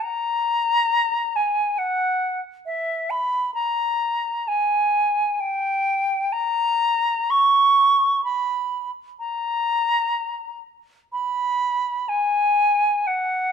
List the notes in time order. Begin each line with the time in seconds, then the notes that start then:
0.02 A#5
1.36 G#5
1.78 F#5
2.66 E5
3.10 B5
3.54 A#5
4.48 G#5
5.40 G5
6.32 A#5
7.30 C#6
8.24 B5
9.19 A#5
11.12 B5
12.09 G#5
13.07 F#5